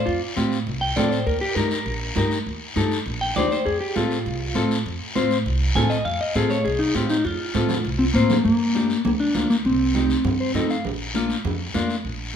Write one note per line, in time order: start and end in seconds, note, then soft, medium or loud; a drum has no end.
0.06 0.19 F2 medium
0.06 0.21 F4 medium
0.06 high conga soft
0.06 long guiro medium
0.36 0.61 A2 medium
0.36 0.57 C4 medium
0.36 0.58 F4 medium
0.36 0.58 G4 medium
0.36 high conga medium
0.36 short guiro medium
0.52 short guiro medium
0.67 0.91 C2 medium
0.67 high conga soft
0.67 long guiro medium
0.81 0.96 G5 medium
0.96 1.20 A2 loud
0.96 1.17 C4 medium
0.96 1.18 F4 medium
0.96 1.18 A4 medium
0.96 1.12 D5 medium
0.96 high conga medium
0.96 low conga medium
0.96 short guiro medium
1.12 1.26 C5 medium
1.12 short guiro medium
1.26 1.38 D#2 medium
1.26 1.41 A#4 loud
1.26 high conga soft
1.26 long guiro medium
1.41 1.55 G4 loud
1.55 1.80 G2 loud
1.55 1.77 D#4 medium
1.55 1.78 G4 medium
1.55 2.43 A#4 loud
1.55 1.78 A#4 medium
1.55 high conga medium
1.55 short guiro medium
1.71 short guiro medium
1.86 2.10 A#1 loud
1.86 high conga soft
1.86 long guiro medium
2.16 2.40 G2 medium
2.16 2.37 D#4 medium
2.16 2.38 G4 medium
2.16 2.38 A#4 medium
2.16 high conga medium
2.16 short guiro medium
2.31 short guiro medium
2.46 2.58 D#2 medium
2.46 high conga soft
2.46 long guiro medium
2.76 3.00 G2 medium
2.76 2.97 D#4 medium
2.76 2.97 G4 medium
2.76 2.98 A4 loud
2.76 high conga medium
2.76 short guiro medium
2.92 short guiro medium
3.06 3.30 A#1 medium
3.06 high conga soft
3.06 long guiro medium
3.21 3.36 G5 loud
3.36 3.60 D#2 medium
3.36 3.57 D#4 medium
3.36 3.58 G4 medium
3.36 3.58 C5 medium
3.36 3.51 D5 medium
3.36 high conga medium
3.36 low conga medium
3.36 short guiro medium
3.51 3.66 C5 medium
3.51 short guiro medium
3.66 3.78 F2 medium
3.66 3.80 G#4 loud
3.66 high conga soft
3.66 long guiro medium
3.80 3.96 G4 loud
3.96 4.20 A2 medium
3.96 4.17 C4 medium
3.96 4.83 F4 medium
3.96 4.17 F4 medium
3.96 4.17 A4 medium
3.96 high conga medium
3.96 short guiro medium
4.11 short guiro medium
4.26 4.50 C2 medium
4.26 high conga soft
4.26 long guiro medium
4.55 4.80 A2 medium
4.55 4.76 C4 medium
4.55 4.77 F4 medium
4.55 4.77 A4 medium
4.55 high conga medium
4.55 short guiro medium
4.71 short guiro medium
4.86 4.98 F2 medium
4.86 high conga soft
4.86 long guiro medium
5.15 5.40 A2 medium
5.15 5.37 C4 medium
5.15 5.37 F4 medium
5.15 5.37 C5 loud
5.15 high conga medium
5.15 short guiro medium
5.31 short guiro medium
5.46 5.70 C2 loud
5.46 high conga soft
5.46 long guiro medium
5.75 6.00 A2 medium
5.75 5.97 C4 medium
5.75 5.97 F4 medium
5.75 5.97 A4 medium
5.75 5.90 G#5 loud
5.75 high conga medium
5.75 low conga medium
5.75 short guiro medium
5.90 6.05 D#5 medium
5.90 short guiro medium
6.05 6.17 F2 medium
6.05 6.20 F5 loud
6.05 high conga soft
6.05 long guiro medium
6.21 6.35 D#5 medium
6.35 6.59 A2 medium
6.35 6.56 C4 medium
6.35 6.57 F4 medium
6.35 6.50 G#4 medium
6.35 6.57 A4 medium
6.35 high conga medium
6.35 short guiro medium
6.50 6.65 C#5 medium
6.50 short guiro medium
6.65 6.89 C2 loud
6.65 6.79 G#4 medium
6.65 high conga soft
6.65 long guiro medium
6.79 6.95 D#4 medium
6.95 7.19 A2 medium
6.95 7.16 C4 medium
6.95 7.09 F4 medium
6.95 7.16 F4 medium
6.95 7.16 G4 medium
6.95 high conga medium
6.95 short guiro medium
7.10 7.25 D#4 loud
7.10 short guiro medium
7.24 7.37 F2 medium
7.24 8.12 F4 loud
7.24 high conga soft
7.24 long guiro medium
7.54 7.79 A2 medium
7.54 7.76 C4 medium
7.54 7.76 F4 medium
7.54 7.76 A4 medium
7.54 high conga loud
7.54 short guiro medium
7.69 low conga loud
7.69 short guiro medium
7.85 8.09 C2 loud
7.85 long guiro medium
7.99 8.04 C4 medium
8.14 8.39 A2 medium
8.14 8.43 A#3 medium
8.14 8.36 C4 medium
8.14 8.36 F4 medium
8.14 8.36 C5 medium
8.14 short guiro medium
8.30 low conga medium
8.30 short guiro medium
8.45 8.93 G2 medium
8.45 9.01 A#3 medium
8.45 high conga soft
8.45 long guiro medium
8.75 8.96 A#3 medium
8.75 8.96 D4 medium
8.75 8.96 G4 medium
8.75 high conga medium
8.75 short guiro medium
8.90 short guiro medium
9.05 9.29 D2 loud
9.05 9.10 A#3 medium
9.05 high conga soft
9.05 low conga medium
9.05 long guiro medium
9.20 9.48 D4 loud
9.35 9.66 D2 medium
9.35 9.56 A#3 medium
9.35 9.56 D4 medium
9.35 9.56 F4 medium
9.35 high conga medium
9.35 low conga medium
9.35 short guiro medium
9.50 9.55 A#3 medium
9.50 short guiro medium
9.65 10.13 C2 medium
9.65 10.66 C4 medium
9.65 high conga soft
9.65 long guiro medium
9.95 10.16 C4 medium
9.95 10.16 D#4 medium
9.95 10.16 G4 medium
9.95 high conga medium
9.95 short guiro medium
10.10 short guiro medium
10.24 10.48 G2 loud
10.24 high conga soft
10.24 low conga medium
10.24 long guiro medium
10.40 10.54 C5 medium
10.54 10.86 G2 medium
10.54 10.76 C4 medium
10.54 10.76 D#4 medium
10.54 10.76 A4 medium
10.54 10.69 D#5 medium
10.54 high conga medium
10.54 low conga medium
10.54 short guiro medium
10.70 10.84 F5 medium
10.70 short guiro medium
10.85 11.32 A#1 medium
10.85 high conga soft
10.85 low conga medium
10.85 long guiro medium
11.14 11.36 A#3 medium
11.14 11.36 D4 medium
11.14 11.36 F4 medium
11.14 high conga medium
11.14 short guiro medium
11.30 short guiro medium
11.45 11.68 F2 loud
11.45 high conga soft
11.45 low conga medium
11.45 long guiro medium
11.74 12.06 F2 medium
11.74 11.95 A#3 medium
11.74 11.95 D4 medium
11.74 11.96 F4 medium
11.74 high conga medium
11.74 short guiro medium
11.90 short guiro medium
12.05 12.36 A#1 medium
12.05 high conga soft
12.05 long guiro medium